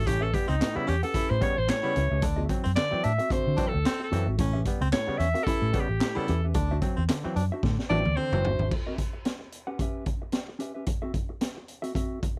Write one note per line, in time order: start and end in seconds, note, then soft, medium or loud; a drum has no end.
0.06 0.31 A1 loud
0.06 0.21 A2 medium
0.06 0.28 C#4 medium
0.06 0.24 G4 loud
0.06 muted clean electric guitar stroke soft
0.06 kick loud
0.06 closed hi-hat loud
0.21 0.32 C#4 medium
0.21 0.32 G4 medium
0.21 0.36 A4 medium
0.21 0.33 B4 medium
0.21 0.33 E5 medium
0.33 0.48 G3 medium
0.33 0.49 B3 medium
0.33 0.50 G4 medium
0.33 kick medium
0.33 closed hi-hat medium
0.48 0.60 C#2 medium
0.48 0.56 C4 medium
0.48 0.78 D#4 medium
0.48 muted clean electric guitar stroke soft
0.48 closed hi-hat soft
0.60 0.75 A2 medium
0.60 muted clean electric guitar stroke medium
0.60 snare loud
0.60 clap medium
0.60 closed hi-hat medium
0.75 0.87 C#3 medium
0.75 0.86 G3 medium
0.75 0.86 B3 medium
0.75 0.90 E4 medium
0.75 muted clean electric guitar stroke medium
0.75 muted fingered electric bass stroke medium
0.87 1.02 E2 medium
0.87 0.94 G3 soft
0.87 0.94 B3 soft
0.87 0.96 C#4 loud
0.87 1.03 G4 loud
0.87 closed hi-hat medium
1.03 1.14 C#4 medium
1.03 1.15 G4 medium
1.03 1.32 A4 medium
1.03 1.15 B4 medium
1.03 1.15 F#5 medium
1.03 closed hi-hat medium
1.14 1.40 C#4 medium
1.14 1.36 E4 loud
1.14 1.41 G4 loud
1.14 1.41 B4 loud
1.14 1.41 E5 medium
1.14 muted fingered electric bass stroke soft
1.14 kick medium
1.14 closed hi-hat loud
1.30 1.41 A2 medium
1.30 1.44 C5 loud
1.41 1.56 C#3 medium
1.41 1.56 G3 medium
1.41 1.56 B3 loud
1.41 1.60 C#5 loud
1.41 kick loud
1.41 closed hi-hat medium
1.57 1.68 A1 medium
1.57 1.72 C5 loud
1.57 muted clean electric guitar stroke medium
1.68 1.83 A2 medium
1.68 2.24 C#5 loud
1.68 muted clean electric guitar stroke soft
1.68 snare medium
1.68 clap medium
1.68 closed hi-hat medium
1.83 1.95 C#3 medium
1.83 1.94 G3 medium
1.83 1.94 B3 medium
1.83 2.05 E4 loud
1.83 muted clean electric guitar stroke soft
1.95 2.10 C#2 medium
1.95 2.02 G3 soft
1.95 2.02 B3 soft
1.95 2.08 C#4 medium
1.95 2.08 G4 medium
1.95 2.09 B4 medium
1.95 2.09 E5 medium
1.95 closed hi-hat medium
2.10 2.23 C#2 medium
2.10 2.21 C#4 soft
2.10 2.21 G4 soft
2.10 2.21 B4 medium
2.10 2.20 E5 medium
2.22 2.47 D2 loud
2.22 2.37 D3 medium
2.22 2.44 D4 loud
2.22 muted clean electric guitar stroke soft
2.22 kick loud
2.22 closed hi-hat loud
2.36 2.48 C4 medium
2.36 2.49 F#4 medium
2.36 2.49 A4 medium
2.36 2.50 E5 medium
2.49 2.64 F#3 medium
2.49 2.65 C4 medium
2.49 kick medium
2.49 closed hi-hat medium
2.64 2.76 F#2 medium
2.64 2.71 C4 medium
2.64 muted clean electric guitar stroke soft
2.64 closed hi-hat medium
2.76 2.92 D3 medium
2.76 3.05 D5 loud
2.76 muted clean electric guitar stroke soft
2.76 snare loud
2.76 clap medium
2.76 closed hi-hat medium
2.91 3.03 E3 medium
2.91 3.03 F#3 medium
2.91 3.03 C4 medium
2.91 muted clean electric guitar stroke soft
2.91 muted fingered electric bass stroke medium
3.04 3.18 A2 medium
3.04 3.10 F#3 soft
3.04 3.10 C4 soft
3.04 3.13 D4 loud
3.04 3.34 E5 loud
3.04 closed hi-hat medium
3.18 3.30 C4 medium
3.18 3.31 F#4 medium
3.18 3.31 A4 medium
3.18 3.31 E5 medium
3.18 closed hi-hat medium
3.30 3.46 D3 soft
3.30 3.56 C4 medium
3.30 3.56 F#4 medium
3.30 3.57 A4 medium
3.30 3.70 C5 medium
3.30 3.57 E5 loud
3.30 muted fingered electric bass stroke soft
3.30 kick loud
3.30 closed hi-hat medium
3.47 3.57 D3 loud
3.57 3.73 E3 medium
3.57 3.73 F#3 medium
3.57 3.73 C4 medium
3.57 3.66 D4 loud
3.57 kick loud
3.57 closed hi-hat medium
3.68 4.03 A4 medium
3.73 3.84 D2 medium
3.73 3.78 F#3 soft
3.73 3.78 C4 soft
3.73 muted clean electric guitar stroke medium
3.85 4.07 C4 loud
3.85 muted clean electric guitar stroke soft
3.85 snare loud
3.85 clap medium
3.85 closed hi-hat loud
4.00 4.29 A4 medium
4.00 muted clean electric guitar stroke soft
4.11 4.25 F#2 medium
4.11 4.27 E3 medium
4.11 4.27 F#3 medium
4.11 4.24 C4 medium
4.11 4.27 C4 loud
4.11 4.24 F#4 medium
4.11 4.24 A4 medium
4.11 4.24 E5 medium
4.11 closed hi-hat medium
4.26 4.38 G#1 loud
4.26 4.37 C4 medium
4.26 4.36 F#4 medium
4.26 4.36 A4 medium
4.26 4.36 E5 medium
4.38 4.63 A1 loud
4.38 4.54 A2 medium
4.38 4.61 C#4 loud
4.38 muted clean electric guitar stroke soft
4.38 kick loud
4.38 closed hi-hat loud
4.53 4.65 C#4 medium
4.53 4.65 G4 medium
4.53 4.66 B4 medium
4.53 4.66 E5 medium
4.65 4.81 G3 medium
4.65 4.81 B3 medium
4.65 muted clean electric guitar stroke soft
4.65 kick medium
4.65 closed hi-hat medium
4.81 4.92 C#2 medium
4.81 4.89 C4 loud
4.81 muted clean electric guitar stroke medium
4.81 closed hi-hat soft
4.92 5.07 A2 medium
4.92 5.20 C#5 loud
4.92 muted clean electric guitar stroke soft
4.92 snare loud
4.92 clap medium
4.92 closed hi-hat loud
5.07 5.19 C#3 medium
5.07 5.18 G3 medium
5.07 5.19 B3 medium
5.07 muted clean electric guitar stroke medium
5.07 muted fingered electric bass stroke soft
5.18 5.33 E2 medium
5.18 5.26 G3 soft
5.18 5.26 B3 soft
5.18 5.29 C#4 medium
5.18 5.45 E5 loud
5.18 closed hi-hat medium
5.34 5.46 C#4 medium
5.34 5.46 G4 medium
5.34 5.47 B4 medium
5.34 5.48 F#5 medium
5.34 closed hi-hat medium
5.44 5.72 C#4 loud
5.44 5.69 E4 loud
5.44 5.72 G4 loud
5.44 5.82 A4 loud
5.44 muted fingered electric bass stroke medium
5.44 kick loud
5.44 closed hi-hat medium
5.48 5.73 B4 loud
5.48 5.73 E5 loud
5.62 5.73 A2 loud
5.73 5.88 C#3 loud
5.73 5.88 G3 medium
5.73 5.88 B3 loud
5.73 kick loud
5.73 closed hi-hat medium
5.80 6.19 G4 medium
5.89 6.00 A1 medium
5.89 muted clean electric guitar stroke medium
6.00 6.15 A2 medium
6.00 muted clean electric guitar stroke medium
6.00 snare loud
6.00 clap medium
6.00 closed hi-hat medium
6.15 6.27 C#3 medium
6.15 6.27 G3 medium
6.15 6.27 B3 medium
6.15 6.37 E4 loud
6.15 6.45 A4 medium
6.15 muted fingered electric bass stroke soft
6.15 muted clean electric guitar stroke soft
6.28 6.52 E2 loud
6.28 6.34 G3 soft
6.28 6.34 B3 soft
6.28 6.40 C#4 medium
6.28 6.41 G4 medium
6.28 6.41 B4 medium
6.28 6.41 E5 medium
6.28 closed hi-hat medium
6.44 6.54 C#4 medium
6.44 6.53 G4 medium
6.44 6.53 B4 medium
6.44 6.53 E5 medium
6.54 6.79 D2 loud
6.54 6.69 D3 medium
6.54 6.77 D4 loud
6.54 muted clean electric guitar stroke medium
6.54 kick loud
6.54 closed hi-hat loud
6.71 6.81 D4 medium
6.71 6.81 F#4 medium
6.71 6.82 C5 medium
6.71 6.82 E5 medium
6.82 6.96 F#3 medium
6.82 6.96 C4 medium
6.82 muted clean electric guitar stroke soft
6.82 kick medium
6.82 closed hi-hat medium
6.97 7.08 E2 medium
6.97 7.04 C4 medium
6.97 muted clean electric guitar stroke medium
7.09 7.24 D3 medium
7.09 muted clean electric guitar stroke medium
7.09 snare loud
7.09 clap medium
7.09 closed hi-hat medium
7.24 7.35 E3 medium
7.24 7.35 F#3 medium
7.24 7.35 C4 medium
7.24 muted fingered electric bass stroke soft
7.24 muted clean electric guitar stroke medium
7.36 7.49 F#2 loud
7.36 7.42 F#3 soft
7.36 7.42 C4 soft
7.36 7.45 D4 loud
7.36 closed hi-hat medium
7.52 7.63 D4 medium
7.52 7.63 F#4 medium
7.52 7.64 C5 medium
7.52 7.64 E5 medium
7.63 7.76 A2 medium
7.63 7.78 D3 medium
7.63 kick loud
7.63 snare medium
7.79 snare medium
7.90 8.04 A1 loud
7.90 8.04 E3 medium
7.90 8.04 F#3 medium
7.90 8.04 C4 medium
7.90 7.99 D4 loud
7.90 8.02 D4 medium
7.90 8.03 F#4 medium
7.90 8.03 C5 medium
7.90 8.18 D5 loud
7.90 8.03 E5 medium
7.90 high tom medium
8.05 8.16 D2 medium
8.05 8.10 F#3 soft
8.05 8.10 C4 medium
8.05 muted clean electric guitar stroke medium
8.05 high tom medium
8.17 8.32 D3 medium
8.17 8.39 C4 loud
8.17 8.71 C5 loud
8.17 muted clean electric guitar stroke soft
8.32 8.44 F#1 loud
8.32 8.44 E3 medium
8.32 8.44 F#3 medium
8.32 8.44 C4 medium
8.32 muted clean electric guitar stroke medium
8.32 mid tom medium
8.44 8.58 G1 medium
8.44 8.51 F#3 soft
8.44 8.51 C4 soft
8.44 8.57 D4 medium
8.44 8.57 F#4 medium
8.44 8.58 C5 medium
8.44 8.58 E5 medium
8.44 floor tom loud
8.59 8.70 G#1 loud
8.59 8.70 D4 medium
8.59 8.70 F#4 medium
8.59 8.70 C5 medium
8.59 8.70 E5 medium
8.59 floor tom medium
8.71 muted clean electric guitar stroke soft
8.71 kick loud
8.71 crash medium
8.87 8.98 C#4 medium
8.87 8.98 G4 medium
8.87 8.99 B4 medium
8.87 8.99 E5 medium
8.98 muted clean electric guitar stroke soft
8.98 kick medium
8.98 closed hi-hat medium
9.13 muted clean electric guitar stroke soft
9.25 muted clean electric guitar stroke soft
9.25 snare medium
9.25 closed hi-hat medium
9.40 muted clean electric guitar stroke soft
9.52 closed hi-hat medium
9.67 9.79 C#4 medium
9.67 9.80 G4 medium
9.67 9.79 B4 medium
9.67 9.79 F#5 medium
9.79 10.05 C#4 medium
9.79 10.05 G4 medium
9.79 10.05 B4 medium
9.79 10.06 E5 medium
9.79 kick medium
9.79 closed hi-hat medium
10.06 kick medium
10.06 closed hi-hat medium
10.22 muted clean electric guitar stroke medium
10.32 muted clean electric guitar stroke soft
10.32 snare medium
10.32 closed hi-hat medium
10.48 muted clean electric guitar stroke soft
10.59 10.72 C#4 medium
10.59 10.72 G4 medium
10.59 10.73 B4 medium
10.59 10.73 E5 medium
10.59 closed hi-hat medium
10.74 10.85 C#4 soft
10.74 10.85 G4 soft
10.74 10.85 B4 medium
10.74 10.84 E5 medium
10.86 muted clean electric guitar stroke soft
10.86 kick loud
10.86 closed hi-hat loud
11.02 11.13 C4 medium
11.02 11.13 F#4 medium
11.02 11.14 A4 medium
11.02 11.14 E5 medium
11.14 muted clean electric guitar stroke soft
11.14 kick medium
11.14 closed hi-hat medium
11.29 muted clean electric guitar stroke soft
11.41 muted clean electric guitar stroke soft
11.41 snare medium
11.41 closed hi-hat medium
11.57 muted clean electric guitar stroke soft
11.68 closed hi-hat medium
11.82 11.93 C4 medium
11.82 11.94 F#4 medium
11.82 11.94 A4 medium
11.82 11.94 E5 medium
11.82 closed hi-hat medium
11.94 12.20 C4 medium
11.94 12.20 F#4 medium
11.94 12.20 A4 medium
11.94 12.21 E5 medium
11.94 kick medium
11.94 closed hi-hat medium
12.21 muted clean electric guitar stroke soft
12.21 kick loud
12.21 closed hi-hat medium